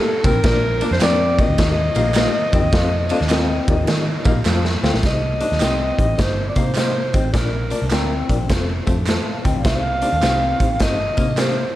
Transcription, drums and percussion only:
0.24 kick loud
0.24 ride medium
0.24 tambourine medium
0.44 kick loud
0.44 snare loud
0.44 ride medium
0.44 tambourine soft
0.81 ride medium
0.81 tambourine medium
0.93 snare soft
1.01 snare loud
1.01 clap loud
1.01 ride medium
1.01 tambourine loud
1.39 kick medium
1.39 ride medium
1.58 kick medium
1.58 snare loud
1.58 ride medium
1.58 tambourine medium
1.95 ride medium
1.95 tambourine medium
2.14 snare loud
2.14 clap loud
2.14 ride medium
2.14 tambourine loud
2.52 kick loud
2.52 ride medium
2.52 tambourine medium
2.72 kick loud
2.72 snare loud
2.72 ride medium
3.09 ride medium
3.09 tambourine medium
3.21 snare soft
3.29 snare loud
3.29 clap loud
3.29 ride medium
3.29 tambourine loud
3.68 kick loud
3.68 ride medium
3.87 snare loud
3.87 ride medium
3.87 tambourine medium
4.24 kick loud
4.24 ride medium
4.24 tambourine medium
4.45 snare medium
4.45 clap loud
4.45 tambourine loud
4.65 snare medium
4.83 snare loud
4.83 tambourine medium
4.94 snare medium
5.03 kick loud
5.03 snare loud
5.03 closed hi-hat medium
5.40 closed hi-hat medium
5.40 tambourine medium
5.52 snare soft
5.60 snare loud
5.60 clap medium
5.60 closed hi-hat medium
5.60 tambourine loud
5.99 kick medium
5.99 closed hi-hat medium
6.18 kick medium
6.18 snare loud
6.18 closed hi-hat medium
6.18 tambourine medium
6.56 kick medium
6.56 closed hi-hat medium
6.56 tambourine medium
6.75 snare loud
6.75 clap medium
6.75 closed hi-hat medium
6.75 tambourine medium
7.13 kick medium
7.13 closed hi-hat medium
7.13 tambourine soft
7.34 kick loud
7.34 snare loud
7.34 closed hi-hat medium
7.34 tambourine soft
7.70 closed hi-hat medium
7.70 tambourine medium
7.90 snare loud
7.90 clap medium
7.90 closed hi-hat medium
7.90 tambourine medium
8.29 kick medium
8.29 closed hi-hat medium
8.29 tambourine soft
8.49 kick medium
8.49 snare loud
8.49 closed hi-hat medium
8.49 tambourine soft
8.87 kick medium
8.87 closed hi-hat medium
8.87 tambourine medium
9.06 snare loud
9.06 clap loud
9.06 closed hi-hat medium
9.06 tambourine medium
9.44 kick medium
9.44 closed hi-hat medium
9.44 tambourine soft
9.65 kick loud
9.65 snare loud
9.65 closed hi-hat medium
9.65 tambourine soft
10.02 closed hi-hat medium
10.02 tambourine medium
10.22 snare loud
10.22 clap loud
10.22 closed hi-hat medium
10.22 tambourine medium
10.60 kick medium
10.60 closed hi-hat medium
10.80 kick medium
10.80 snare loud
10.80 closed hi-hat loud
10.80 tambourine medium
11.17 kick medium
11.17 closed hi-hat medium
11.17 tambourine medium
11.37 snare loud
11.37 clap medium
11.37 closed hi-hat medium
11.37 tambourine medium

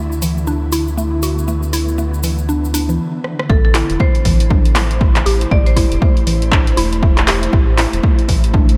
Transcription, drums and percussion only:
0.12 cabasa soft
0.22 open hi-hat medium
0.22 cabasa medium
0.38 cabasa soft
0.47 cabasa soft
0.72 open hi-hat medium
0.72 cabasa medium
0.88 cabasa soft
0.98 cabasa medium
1.22 open hi-hat medium
1.22 cabasa medium
1.39 cabasa soft
1.48 cabasa soft
1.63 cabasa soft
1.73 open hi-hat medium
1.73 cabasa medium
1.88 cabasa soft
1.98 cabasa soft
2.14 cabasa soft
2.23 open hi-hat medium
2.23 cabasa medium
2.38 cabasa soft
2.49 cabasa soft
2.65 cabasa soft
2.74 open hi-hat medium
2.74 cabasa medium
2.89 cabasa soft
3.24 cross-stick medium
3.39 cross-stick medium
3.50 kick loud
3.75 clap medium
3.75 open hi-hat loud
3.90 closed hi-hat medium
4.00 kick loud
4.15 closed hi-hat soft
4.25 kick medium
4.25 open hi-hat medium
4.40 closed hi-hat medium
4.50 kick loud
4.50 mid tom medium
4.65 closed hi-hat soft
4.76 clap loud
4.76 mid tom medium
4.76 open hi-hat loud
4.91 closed hi-hat medium
5.01 kick loud
5.16 clap medium
5.16 closed hi-hat soft
5.26 open hi-hat medium
5.41 closed hi-hat medium
5.51 kick loud
5.51 mid tom medium
5.67 closed hi-hat soft
5.77 kick medium
5.77 mid tom medium
5.77 open hi-hat loud
5.92 closed hi-hat medium
6.02 kick loud
6.17 closed hi-hat soft
6.27 open hi-hat medium
6.42 closed hi-hat medium
6.52 kick loud
6.52 clap loud
6.67 closed hi-hat soft
6.77 open hi-hat loud
6.93 closed hi-hat medium
7.03 kick loud
7.18 clap medium
7.18 closed hi-hat soft
7.28 clap loud
7.28 open hi-hat medium
7.43 closed hi-hat medium
7.53 kick loud
7.78 clap medium
7.78 open hi-hat medium
7.93 closed hi-hat medium
8.04 kick loud
8.19 closed hi-hat soft
8.29 kick medium
8.29 open hi-hat medium
8.44 closed hi-hat medium
8.54 kick loud
8.54 mid tom medium
8.69 closed hi-hat soft

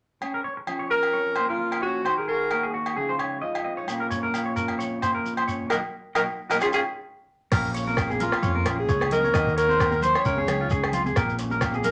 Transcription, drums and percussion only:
0.22 low agogo soft
0.67 low agogo medium
1.03 low agogo medium
1.36 low agogo medium
1.72 low agogo medium
2.06 low agogo medium
2.51 low agogo medium
2.86 low agogo medium
3.19 low agogo medium
3.55 low agogo medium
3.88 low agogo medium
3.88 shekere medium
4.11 shekere medium
4.34 low agogo medium
4.34 shekere medium
4.57 shekere medium
4.68 low agogo soft
4.80 shekere medium
5.02 low agogo medium
5.02 shekere medium
5.26 shekere medium
5.37 low agogo medium
5.48 shekere medium
5.70 low agogo medium
5.70 shekere medium
6.15 low agogo medium
6.15 shekere medium
6.51 low agogo medium
6.51 shekere medium
6.61 low agogo medium
6.61 shekere medium
6.73 low agogo medium
6.73 shekere medium
7.52 kick medium
7.52 cross-stick medium
7.52 crash medium
7.52 low agogo medium
7.52 shekere medium
7.65 shekere soft
7.75 closed hi-hat soft
7.75 shekere medium
7.87 high conga medium
7.87 shekere soft
7.97 kick medium
7.97 cross-stick medium
7.97 low agogo medium
7.97 shekere medium
8.10 high conga medium
8.10 shekere soft
8.20 closed hi-hat soft
8.20 low conga medium
8.20 shekere medium
8.32 cross-stick medium
8.32 low agogo medium
8.32 shekere soft
8.43 kick medium
8.43 shekere medium
8.55 high conga medium
8.65 cross-stick medium
8.65 closed hi-hat soft
8.65 low conga medium
8.65 low agogo medium
8.65 shekere medium
8.89 kick medium
8.89 shekere medium
9.00 cross-stick medium
9.00 high conga medium
9.00 low agogo medium
9.11 closed hi-hat soft
9.11 low conga medium
9.11 shekere medium
9.23 high conga medium
9.23 shekere soft
9.34 kick medium
9.34 cross-stick medium
9.34 low agogo medium
9.34 shekere medium
9.47 kick medium
9.47 shekere soft
9.58 closed hi-hat soft
9.58 shekere medium
9.68 high conga medium
9.68 shekere soft
9.80 kick medium
9.80 cross-stick medium
9.80 low agogo medium
9.80 shekere medium
9.91 high conga medium
9.91 shekere soft
10.01 closed hi-hat soft
10.01 low conga medium
10.01 shekere medium
10.15 cross-stick medium
10.15 low agogo medium
10.15 shekere soft
10.25 kick medium
10.25 shekere medium
10.36 high conga medium
10.47 cross-stick medium
10.47 closed hi-hat soft
10.47 low conga medium
10.47 low agogo medium
10.47 shekere medium
10.70 kick medium
10.70 shekere medium
10.84 cross-stick medium
10.84 low agogo medium
10.92 closed hi-hat soft
10.92 low conga medium
10.92 shekere medium
11.05 high conga medium
11.05 shekere soft
11.16 kick medium
11.16 cross-stick medium
11.16 low agogo medium
11.16 shekere medium
11.29 shekere soft
11.39 closed hi-hat soft
11.39 shekere medium
11.50 high conga medium
11.50 shekere soft
11.61 kick medium
11.61 cross-stick medium
11.61 low agogo medium
11.61 shekere medium
11.73 high conga medium
11.73 shekere soft
11.83 closed hi-hat soft
11.83 low conga medium
11.83 shekere medium

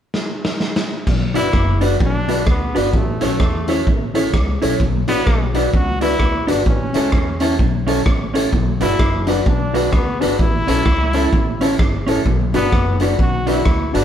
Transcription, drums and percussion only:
0.14 snare medium
0.45 snare medium
0.60 snare medium
0.76 snare medium
1.07 kick loud
1.07 crash medium
1.35 closed hi-hat medium
1.53 kick loud
1.53 cross-stick loud
1.81 closed hi-hat medium
2.00 kick loud
2.29 closed hi-hat medium
2.47 kick loud
2.47 cross-stick loud
2.76 closed hi-hat medium
2.93 kick medium
3.21 closed hi-hat medium
3.40 kick loud
3.40 cross-stick loud
3.68 closed hi-hat medium
3.87 kick loud
4.15 closed hi-hat medium
4.34 kick loud
4.34 cross-stick loud
4.62 closed hi-hat medium
4.80 kick loud
5.08 closed hi-hat medium
5.27 kick loud
5.27 cross-stick loud
5.55 closed hi-hat medium
5.74 kick loud
6.01 closed hi-hat medium
6.19 kick loud
6.19 cross-stick loud
6.48 closed hi-hat medium
6.66 kick loud
6.94 closed hi-hat medium
7.12 kick loud
7.12 cross-stick loud
7.40 closed hi-hat medium
7.59 kick loud
7.88 closed hi-hat medium
8.06 kick loud
8.06 cross-stick loud
8.35 closed hi-hat medium
8.53 kick medium
8.81 closed hi-hat medium
8.99 kick loud
8.99 cross-stick loud
9.27 closed hi-hat medium
9.46 kick loud
9.75 closed hi-hat medium
9.93 kick loud
9.93 cross-stick loud
10.22 closed hi-hat medium
10.39 kick loud
10.68 closed hi-hat medium
10.86 kick loud
10.86 cross-stick loud
11.13 closed hi-hat medium
11.33 kick loud
11.61 closed hi-hat medium
11.79 kick loud
11.79 cross-stick loud
12.08 closed hi-hat medium
12.26 kick medium
12.54 closed hi-hat medium
12.72 kick loud
12.72 cross-stick loud
13.00 closed hi-hat medium
13.19 kick loud
13.47 closed hi-hat medium
13.65 kick loud
13.65 cross-stick loud
13.95 closed hi-hat medium

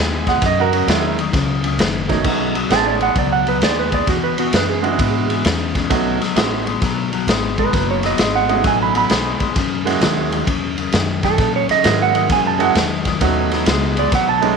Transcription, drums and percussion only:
0.27 kick medium
0.27 snare soft
0.27 ride medium
0.42 kick loud
0.42 snare soft
0.42 ride medium
0.73 ride medium
0.88 snare loud
0.88 ride medium
1.19 ride medium
1.33 kick loud
1.33 snare soft
1.33 ride medium
1.64 ride medium
1.79 snare loud
1.79 ride medium
2.09 kick medium
2.09 snare soft
2.09 ride medium
2.24 kick loud
2.24 crash medium
2.55 ride medium
2.70 snare loud
2.70 ride medium
3.01 ride medium
3.15 kick loud
3.15 ride medium
3.47 ride medium
3.62 snare loud
3.62 ride medium
3.92 kick medium
3.92 ride medium
4.07 kick loud
4.07 snare soft
4.07 ride medium
4.38 ride medium
4.53 snare loud
4.53 ride medium
4.84 ride medium
4.99 kick loud
4.99 ride medium
5.30 ride medium
5.45 snare loud
5.45 ride medium
5.75 kick medium
5.75 snare soft
5.75 ride medium
5.90 kick loud
5.90 snare soft
5.90 ride medium
6.21 snare soft
6.21 ride medium
6.36 snare loud
6.36 ride medium
6.67 ride medium
6.82 kick loud
6.82 snare soft
6.82 ride medium
7.13 ride medium
7.28 snare loud
7.28 ride medium
7.58 kick medium
7.58 ride medium
7.73 kick loud
7.73 snare soft
7.73 ride medium
8.03 snare soft
8.03 ride medium
8.18 snare loud
8.18 ride medium
8.49 ride medium
8.64 kick loud
8.64 snare soft
8.64 ride medium
8.95 ride medium
9.10 snare loud
9.10 ride medium
9.40 kick medium
9.40 ride medium
9.56 kick loud
9.56 snare soft
9.56 ride medium
9.87 snare soft
9.87 ride medium
10.01 snare loud
10.01 ride medium
10.32 ride medium
10.47 kick loud
10.47 ride medium
10.78 ride medium
10.92 snare loud
10.92 ride medium
11.23 kick medium
11.23 snare soft
11.23 ride medium
11.38 kick loud
11.38 snare soft
11.38 ride medium
11.69 snare soft
11.69 ride medium
11.84 snare loud
11.84 ride medium
12.15 ride medium
12.30 kick loud
12.30 snare soft
12.30 ride medium
12.60 ride medium
12.75 snare loud
12.75 ride medium
13.05 kick medium
13.05 snare soft
13.05 ride medium
13.21 kick loud
13.21 snare soft
13.21 ride medium
13.51 snare soft
13.51 ride medium
13.66 snare loud
13.66 ride medium
13.97 ride medium
14.12 kick loud
14.12 snare soft
14.12 ride medium
14.42 ride medium

